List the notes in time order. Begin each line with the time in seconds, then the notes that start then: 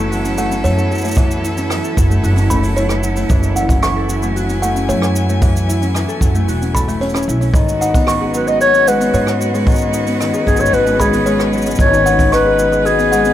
Already playing: F#1 E3 F#3 A3 B3 C#4 E4 F#4 A4
0.11 F#4, open hi-hat, cabasa
0.24 C#4, open hi-hat, cabasa
0.37 A3 F#5, open hi-hat, cabasa
0.51 C#4, open hi-hat, cabasa
0.64 F#2 A3 C#5, open hi-hat, cabasa
0.79 cabasa
0.91 F#3, cabasa
0.95 cabasa
0.98 cabasa
1.01 A3, open hi-hat, cabasa
1.05 cabasa
1.08 cabasa
1.11 cabasa
1.14 E3, kick, open hi-hat, cabasa
1.18 cabasa
1.31 cabasa
1.44 E4, open hi-hat, cabasa
1.57 C#4, open hi-hat, cabasa
1.70 E3, cross-stick, open hi-hat, cabasa
1.84 A4, cabasa
1.97 F#1 F#3, kick, open hi-hat, cabasa
2.10 A3, cabasa
2.23 F#1 F#4, open hi-hat, cabasa
2.35 C#4, open hi-hat, cabasa
2.50 A3 B5, kick, open hi-hat, cabasa
2.63 C#4, open hi-hat, cabasa
2.76 A3 C#5, open hi-hat, cabasa
2.89 cross-stick, cabasa
3.03 F#3, cabasa
3.15 A3, open hi-hat, cabasa
3.28 F#1 E3, kick, open hi-hat, cabasa
3.43 cabasa
3.56 E4 F#5, open hi-hat, cabasa
3.69 C#4, kick, open hi-hat, cabasa
3.82 E3 C#6, cross-stick, open hi-hat, cabasa
3.96 A4
4.09 F#3 G#5, cabasa
4.22 A3, cabasa
4.36 F#4, open hi-hat, cabasa
4.49 C#4, open hi-hat, cabasa
4.62 A3 F#5, open hi-hat, cabasa
4.71 open hi-hat
4.76 C#4, open hi-hat, cabasa
4.80 open hi-hat
4.89 F#2 A3 C#5, open hi-hat, cabasa
5.02 cross-stick, cabasa
5.15 F#3, cabasa
5.29 A3, cabasa
5.41 E3, kick, open hi-hat, cabasa
5.57 cabasa
5.68 E4, open hi-hat, cabasa
5.82 C#4, open hi-hat, cabasa
5.95 E3, cross-stick, open hi-hat, cabasa
6.08 A4, cabasa
6.21 F#1 F#3, kick, open hi-hat, cabasa
6.35 A3, cabasa
6.48 E1 F#4, open hi-hat, cabasa
6.62 C#4, open hi-hat, cabasa
6.74 A4 B5, kick, open hi-hat, cabasa
6.88 A3, open hi-hat, cabasa
7.01 C#4 C#5, open hi-hat, cabasa
7.09 cabasa
7.14 C#4, cross-stick, cabasa
7.23 cabasa
7.28 B1 E4, cabasa
7.41 C#4, open hi-hat, cabasa
7.44 open hi-hat
7.47 open hi-hat
7.50 G#1, kick, open hi-hat
7.54 D#3 G#3, open hi-hat, cabasa
7.57 open hi-hat
7.61 open hi-hat
7.64 F#4, open hi-hat
7.69 cabasa
7.76 B4
7.81 C#4 D#4 F#5, open hi-hat, cabasa
7.94 B3, kick, open hi-hat, cabasa
8.07 D#3 C#6, cross-stick, open hi-hat, cabasa
8.20 G#4
8.34 F#3 B4, cabasa
8.47 G#3 D#5, cabasa
8.60 F#4 C#5, open hi-hat, cabasa
8.74 B3, open hi-hat, cabasa
8.86 G#3 B4 F#5, open hi-hat, cabasa
9.00 B3, open hi-hat, cabasa
9.13 G#2 G#3 C#5, open hi-hat, cabasa
9.27 cross-stick, cabasa
9.40 F#3, cabasa
9.54 G#3, open hi-hat, cabasa
9.66 D#3, kick, open hi-hat, cabasa
9.69 cabasa
9.71 cabasa
9.73 cabasa
9.76 cabasa
9.78 cabasa
9.81 cabasa
9.92 D#4, open hi-hat, cabasa
10.06 B3, open hi-hat, cabasa
10.20 D#3, cross-stick, open hi-hat, cabasa
10.33 G#4, cabasa
10.46 G#1 F#3 G#4, kick, open hi-hat, cabasa
10.57 G#3, cabasa
10.60 C#5, cabasa
10.66 cabasa
10.73 G#1 F#4 B4, open hi-hat, cabasa
10.86 B3, open hi-hat, cabasa
10.99 G#3 G#4 B5, kick, open hi-hat, cabasa
11.13 B3, open hi-hat, cabasa
11.26 G#3 C#5, open hi-hat, cabasa
11.39 cross-stick, cabasa
11.53 F#3, cabasa
11.57 cabasa
11.62 open hi-hat, cabasa
11.66 G#3, cabasa
11.71 cabasa
11.75 G#1 D#3, kick, open hi-hat, cabasa
11.79 C#5, cabasa
11.94 cabasa
12.06 D#4 F#5, open hi-hat, cabasa
12.19 B3, kick, open hi-hat, cabasa
12.32 D#3 B4 C#6, cross-stick, open hi-hat, cabasa
12.45 G#4
12.59 F#3, cabasa
12.72 G#3, cabasa
12.78 G#4
12.85 F#4 G#4, open hi-hat, cabasa
12.98 B3, open hi-hat, cabasa
13.12 G#3 F#5, open hi-hat, cabasa
13.25 B3, open hi-hat, cabasa